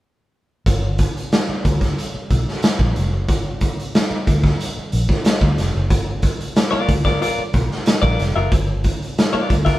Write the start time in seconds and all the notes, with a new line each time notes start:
0.66 G1, kick, closed hi-hat
0.98 kick, closed hi-hat
1.17 closed hi-hat
1.32 snare, closed hi-hat
1.49 muted fingered electric bass stroke
1.65 D2, kick, closed hi-hat
1.81 kick, snare, closed hi-hat
1.98 closed hi-hat
2.15 muted fingered electric bass stroke
2.30 B1, kick, closed hi-hat
2.48 snare
2.62 snare, closed hi-hat
2.79 A#1, kick
2.96 F1, closed hi-hat
3.13 F#1
3.28 G1, kick, closed hi-hat
3.61 kick, closed hi-hat
3.79 closed hi-hat
3.95 snare, closed hi-hat
4.11 muted fingered electric bass stroke
4.27 D2, kick, closed hi-hat
4.44 kick, snare
4.60 closed hi-hat
4.77 muted fingered electric bass stroke
4.92 A#1, closed hi-hat
5.09 kick, snare
5.25 snare, closed hi-hat
5.41 D2, kick
5.58 F1, snare, closed hi-hat
5.75 F#1
5.90 G1, kick, closed hi-hat
6.22 kick, closed hi-hat
6.41 closed hi-hat
6.56 snare, closed hi-hat
6.71 B3 F4 A#4 D5, muted fingered electric bass stroke
6.88 D2, kick, closed hi-hat
7.05 B3 F4 A#4 D5, kick, snare
7.21 B3 F4 A#4 D5, closed hi-hat
7.38 muted fingered electric bass stroke
7.53 B1, kick, closed hi-hat
7.72 snare
7.86 snare, closed hi-hat
8.02 A#1 B3 F4 A#4 D5, kick
8.19 F1, snare, closed hi-hat
8.36 F#1 B3 F4 A#4 E5
8.52 G1, kick, closed hi-hat
8.84 kick, closed hi-hat
9.02 closed hi-hat
9.18 snare, closed hi-hat
9.33 B3 F4 A#4 D5, muted fingered electric bass stroke
9.50 D2, kick, closed hi-hat
9.65 B3 F4 A#4 E5, kick, snare, closed hi-hat